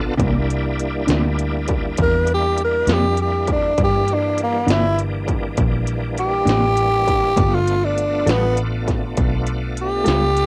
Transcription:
0.00 0.17 B1 medium
0.00 0.15 B3 medium
0.00 0.15 D4 medium
0.00 0.15 F4 medium
0.00 0.15 A4 medium
0.17 1.06 C2 medium
0.17 0.36 C3 medium
0.17 0.37 E3 medium
0.17 3.74 G3 medium
0.17 3.74 A#3 medium
0.17 0.37 A#3 medium
0.17 3.74 D4 medium
0.17 0.37 D4 medium
0.17 3.74 E4 medium
0.17 kick loud
0.17 closed hi-hat medium
0.50 closed hi-hat medium
0.79 closed hi-hat medium
1.07 1.96 D2 medium
1.07 1.27 C3 medium
1.07 1.27 E3 medium
1.07 1.26 A#3 medium
1.07 1.26 D4 medium
1.07 snare medium
1.07 closed hi-hat medium
1.39 closed hi-hat medium
1.68 kick medium
1.68 closed hi-hat medium
1.97 2.86 E2 medium
1.97 kick medium
1.97 closed hi-hat medium
2.02 2.29 A#4 medium
2.27 closed hi-hat medium
2.34 2.60 G4 medium
2.58 closed hi-hat medium
2.64 2.94 A#4 medium
2.87 3.75 F2 medium
2.87 3.07 C3 medium
2.87 3.06 E3 medium
2.87 3.06 A#3 medium
2.87 3.06 D4 medium
2.87 snare medium
2.87 closed hi-hat medium
2.93 3.20 G4 medium
3.17 closed hi-hat medium
3.22 3.49 G4 medium
3.48 kick medium
3.48 closed hi-hat medium
3.52 3.79 D4 medium
3.78 4.65 G2 medium
3.78 7.34 E3 medium
3.78 7.34 G3 medium
3.78 7.34 A#3 medium
3.78 7.34 D4 medium
3.78 kick loud
3.78 closed hi-hat medium
3.84 4.15 G4 medium
4.08 closed hi-hat medium
4.14 4.40 D4 medium
4.38 closed hi-hat medium
4.43 4.72 A#3 medium
4.67 5.55 G1 medium
4.67 4.86 C3 medium
4.67 4.86 E3 medium
4.67 4.86 A#3 medium
4.67 4.85 D4 medium
4.67 snare loud
4.67 closed hi-hat medium
4.71 4.98 E4 medium
4.99 closed hi-hat medium
5.28 kick medium
5.28 closed hi-hat soft
5.57 6.45 A#1 medium
5.57 kick loud
5.57 closed hi-hat medium
5.87 closed hi-hat medium
6.18 7.56 G4 loud
6.18 closed hi-hat medium
6.45 7.34 A1 medium
6.45 6.65 C3 medium
6.45 6.65 E3 medium
6.45 6.65 A#3 medium
6.45 6.64 D4 medium
6.45 snare medium
6.45 closed hi-hat medium
6.77 closed hi-hat medium
7.08 kick medium
7.08 closed hi-hat medium
7.36 8.25 G1 medium
7.36 7.55 G3 medium
7.36 10.46 A3 medium
7.36 7.55 B3 medium
7.36 10.46 B3 medium
7.36 10.46 D4 medium
7.36 7.55 F4 medium
7.36 10.46 F4 medium
7.36 7.56 A4 medium
7.36 kick loud
7.36 closed hi-hat medium
7.54 7.86 F4 medium
7.67 closed hi-hat medium
7.84 8.31 D4 medium
7.98 closed hi-hat medium
8.26 9.14 A1 medium
8.26 8.46 G3 soft
8.26 8.46 B3 medium
8.26 8.58 B3 medium
8.26 8.45 F4 medium
8.26 8.45 A4 medium
8.26 snare loud
8.26 closed hi-hat medium
8.57 closed hi-hat medium
8.88 kick medium
8.88 snare soft
8.88 closed hi-hat medium
9.17 10.04 B1 medium
9.17 kick loud
9.17 closed hi-hat medium
9.47 closed hi-hat medium
9.77 closed hi-hat medium
9.82 10.46 G4 loud
10.04 10.46 C#2 loud
10.04 10.24 G3 medium
10.04 10.24 B3 medium
10.04 10.24 F4 medium
10.04 10.23 A4 medium
10.04 snare loud
10.04 closed hi-hat medium
10.37 closed hi-hat medium

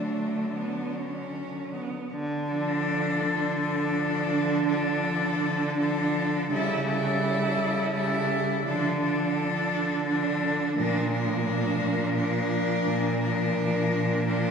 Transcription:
0.00 1.87 D3 medium
0.00 1.88 F#3 soft
0.00 0.57 A3 medium
0.00 1.73 D4 medium
0.56 0.97 B3 medium
0.95 1.75 C#4 medium
1.74 2.12 B3 medium
2.13 3.11 D3 loud
2.51 3.58 F3 medium
2.51 3.58 D4 medium
2.51 3.58 A4 medium
3.24 4.18 D3 medium
3.60 4.64 F3 medium
3.60 4.66 D4 medium
3.60 4.65 A4 medium
4.31 5.27 D3 medium
4.66 5.75 F3 medium
4.66 5.76 D4 medium
4.66 5.76 A4 medium
5.41 6.37 D3 medium
5.78 6.48 F3 medium
5.78 6.49 D4 medium
5.78 6.49 A4 medium
6.50 7.45 C#3 loud
6.50 6.85 G3 medium
6.50 6.86 E4 medium
6.50 6.85 A4 medium
6.85 7.92 G3 medium
6.85 7.92 E4 medium
6.85 7.92 A4 medium
7.58 8.53 C#3 medium
7.94 8.65 G3 medium
7.94 8.64 E4 medium
7.94 8.64 A4 medium
8.65 9.60 D3 medium
8.65 9.01 F3 medium
8.65 9.00 D4 medium
8.65 9.00 A4 medium
9.01 10.06 F3 medium
9.01 10.06 D4 medium
9.01 10.05 A4 medium
9.73 10.65 D3 medium
10.08 10.76 F3 medium
10.08 10.76 D4 medium
10.08 10.76 A4 medium
10.77 11.69 A#2 loud
10.77 11.10 F3 medium
10.77 11.12 D4 medium
10.77 11.11 A#4 medium
11.11 12.13 F3 medium
11.11 12.15 D4 medium
11.11 12.14 A#4 medium
11.80 12.74 A#2 medium
12.16 13.20 F3 medium
12.16 13.20 D4 medium
12.16 13.21 A#4 medium
12.87 13.80 A#2 medium
13.21 14.25 F3 medium
13.21 14.27 D4 medium
13.21 14.26 A#4 medium
13.92 14.51 A#2 medium
14.27 14.51 F3 medium
14.27 14.51 D4 medium
14.27 14.51 A#4 medium

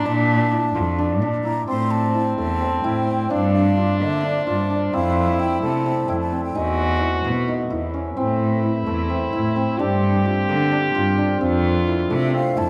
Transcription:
0.00 1.40 D4 medium
0.00 0.52 E4 medium
0.05 0.64 A#2 loud
0.05 0.98 D4 medium
0.05 1.22 A5 medium
0.52 0.81 E4 medium
0.75 1.23 F2 medium
0.75 1.51 F4 medium
0.98 1.21 D4 medium
1.22 1.61 A#2 medium
1.22 3.30 D4 medium
1.44 2.14 E4 medium
1.44 1.66 A#5 medium
1.68 2.27 A2 medium
1.68 2.60 C4 medium
1.68 3.33 C4 medium
1.68 1.92 C6 medium
1.91 2.37 A5 medium
2.14 2.84 E4 medium
2.38 2.77 E2 medium
2.38 4.06 A3 medium
2.38 2.86 A5 medium
2.60 3.07 C4 medium
2.84 3.23 A2 medium
2.84 3.83 E4 medium
2.84 3.32 G5 medium
3.07 4.93 C4 medium
3.30 3.89 G2 loud
3.30 4.23 D4 medium
3.30 4.96 D4 medium
3.30 3.53 F5 medium
3.54 3.97 F5 medium
3.77 4.46 F4 medium
4.00 4.40 D3 medium
4.00 5.68 A#3 medium
4.00 4.43 E5 medium
4.23 4.70 D4 medium
4.46 4.85 G2 medium
4.46 5.46 F4 medium
4.46 4.79 D5 medium
4.70 6.61 D4 medium
4.93 5.51 F2 loud
4.93 5.85 C4 medium
4.93 6.29 E4 medium
4.93 5.41 F5 medium
5.40 6.09 E4 medium
5.40 5.62 G5 medium
5.62 6.02 C3 medium
5.62 8.86 A3 medium
5.62 6.10 A5 medium
5.86 6.32 C4 medium
6.08 6.48 F2 medium
6.08 6.61 E4 medium
6.08 6.19 G5 medium
6.20 6.42 A5 medium
6.32 7.30 C4 medium
6.44 6.57 G5 medium
6.55 7.14 E2 loud
6.55 7.07 D#4 medium
6.55 7.90 F#4 medium
6.55 7.25 G#5 medium
7.01 7.54 E4 medium
7.24 7.64 B2 medium
7.24 8.23 B3 medium
7.48 7.76 D#4 medium
7.70 8.10 E2 medium
7.70 8.63 E4 medium
7.94 8.23 C#4 medium
8.17 8.76 A2 medium
8.17 9.09 C4 medium
8.17 9.80 E4 medium
8.63 9.32 E4 medium
8.86 9.26 E2 medium
8.86 10.55 A3 medium
9.10 9.56 C4 medium
9.33 9.72 A2 medium
9.33 10.31 E4 medium
9.56 11.40 C4 medium
9.79 10.38 G2 loud
9.79 10.71 D4 medium
9.79 11.40 G4 loud
10.25 10.94 F4 medium
10.49 10.88 D3 medium
10.49 12.16 A#3 medium
10.72 11.18 D4 medium
10.95 11.34 G2 medium
10.95 11.93 F4 medium
11.18 12.70 D4 medium
11.41 11.99 F2 loud
11.41 12.33 C4 medium
11.41 12.70 F4 medium
11.87 12.56 E4 medium
12.10 12.50 C3 medium
12.10 12.70 A3 medium
12.10 12.33 E5 medium
12.34 12.70 C4 medium
12.34 12.59 F5 medium
12.56 12.70 F2 medium
12.56 12.70 E4 medium
12.56 12.70 A5 medium

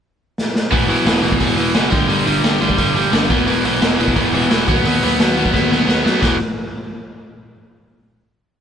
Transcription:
0.38 snare medium
0.56 snare medium
0.71 0.86 E1 medium
0.71 0.88 E2 medium
0.71 0.88 B2 medium
0.71 0.87 E3 loud
0.71 kick loud
0.71 open hi-hat medium
0.88 1.03 B1 medium
0.88 1.05 E2 medium
0.88 1.05 B2 medium
0.88 1.06 E3 medium
0.88 open hi-hat medium
1.06 1.20 E1 medium
1.06 1.23 E2 medium
1.06 1.22 B2 medium
1.06 1.22 E3 loud
1.06 snare loud
1.06 open hi-hat medium
1.23 1.37 E1 medium
1.23 1.39 E2 medium
1.23 1.40 B2 medium
1.23 1.40 E3 medium
1.23 open hi-hat medium
1.32 kick medium
1.41 1.55 E1 medium
1.41 1.57 E2 medium
1.41 1.57 B2 medium
1.41 1.56 E3 loud
1.41 kick loud
1.41 open hi-hat medium
1.57 1.72 E1 medium
1.57 1.74 E2 medium
1.57 1.74 B2 medium
1.57 1.75 E3 medium
1.57 open hi-hat medium
1.74 1.90 F#1 medium
1.74 1.91 E2 medium
1.74 1.91 B2 medium
1.74 1.92 E3 medium
1.74 snare loud
1.74 open hi-hat medium
1.91 2.06 G1 medium
1.91 2.08 G2 medium
1.91 2.08 D3 medium
1.91 2.07 G3 loud
1.91 kick loud
1.91 open hi-hat medium
2.08 2.24 G1 medium
2.08 2.25 G2 medium
2.08 2.25 D3 medium
2.08 2.26 G3 medium
2.08 open hi-hat medium
2.26 2.41 G1 medium
2.26 2.44 G2 medium
2.26 2.43 D3 medium
2.26 2.42 G3 medium
2.26 open hi-hat medium
2.44 2.58 G1 medium
2.44 2.60 G2 medium
2.44 2.60 D3 medium
2.44 2.60 G3 loud
2.44 snare loud
2.44 open hi-hat medium
2.61 2.75 G1 medium
2.61 2.78 G2 medium
2.61 2.78 D3 medium
2.61 2.77 G3 medium
2.61 open hi-hat medium
2.70 kick medium
2.78 3.07 G1 medium
2.78 2.93 G2 medium
2.78 2.94 D3 medium
2.78 2.94 G3 loud
2.78 kick medium
2.78 open hi-hat medium
2.94 3.12 G2 medium
2.94 3.12 D3 medium
2.94 3.11 G3 medium
2.94 open hi-hat soft
3.12 3.30 G1 medium
3.12 3.29 G2 medium
3.12 3.29 D3 medium
3.12 3.29 G3 medium
3.12 snare loud
3.12 open hi-hat medium
3.29 3.44 E1 medium
3.29 3.47 E2 medium
3.29 3.46 B2 loud
3.29 3.46 E3 loud
3.29 kick loud
3.29 open hi-hat medium
3.47 3.62 E1 medium
3.47 3.63 E2 medium
3.47 3.64 B2 medium
3.47 3.64 E3 loud
3.47 open hi-hat medium
3.64 3.79 B1 medium
3.64 3.81 E2 medium
3.64 3.80 B2 medium
3.64 3.80 E3 loud
3.64 open hi-hat medium
3.81 3.96 E1 medium
3.81 3.98 E2 medium
3.81 3.98 B2 medium
3.81 3.99 E3 loud
3.81 snare loud
3.81 open hi-hat medium
3.99 4.13 E1 medium
3.99 4.16 E2 medium
3.99 4.15 B2 medium
3.99 4.15 E3 medium
3.99 open hi-hat medium
4.08 kick medium
4.16 4.31 E1 medium
4.16 4.33 E2 medium
4.16 4.33 B2 medium
4.16 4.34 E3 medium
4.16 kick medium
4.16 open hi-hat medium
4.34 4.48 E1 medium
4.34 4.50 E2 medium
4.34 4.50 B2 medium
4.34 4.49 E3 medium
4.34 open hi-hat medium
4.50 4.65 E1 medium
4.50 4.67 E2 medium
4.50 4.67 B2 medium
4.50 4.67 E3 medium
4.50 snare loud
4.50 open hi-hat medium
4.68 4.82 D#2 medium
4.68 4.85 B2 medium
4.68 4.85 F#3 medium
4.68 4.84 B3 loud
4.68 kick loud
4.68 open hi-hat medium
4.85 4.99 D#2 medium
4.85 5.01 B2 medium
4.85 5.02 F#3 medium
4.85 5.03 B3 loud
4.85 open hi-hat medium
5.02 5.16 D#2 medium
5.02 5.20 B2 medium
5.02 5.19 F#3 medium
5.02 5.19 B3 medium
5.02 open hi-hat medium
5.19 5.33 D#2 medium
5.19 5.35 B2 medium
5.19 5.36 F#3 medium
5.19 5.36 B3 medium
5.19 snare loud
5.19 open hi-hat medium
5.36 5.50 D#2 medium
5.36 5.53 B2 medium
5.36 5.53 F#3 medium
5.36 5.52 B3 medium
5.36 open hi-hat medium
5.46 kick medium
5.53 5.82 D#2 medium
5.53 5.69 B2 medium
5.53 5.70 F#3 medium
5.53 5.70 B3 loud
5.53 kick medium
5.53 snare medium
5.70 5.87 B2 medium
5.70 5.86 F#3 medium
5.70 5.86 B3 medium
5.70 snare medium
5.87 6.02 D#2 medium
5.87 6.03 B2 medium
5.87 6.04 F#3 medium
5.87 6.04 B3 medium
5.87 snare medium
6.05 6.20 F#2 medium
6.05 6.20 B2 medium
6.05 6.21 F#3 medium
6.05 6.21 B3 medium
6.05 snare medium
6.21 6.38 E1 medium
6.21 6.35 E2 medium
6.21 6.36 B2 loud
6.21 6.36 E3 medium
6.21 kick loud
6.21 snare loud
6.21 crash medium

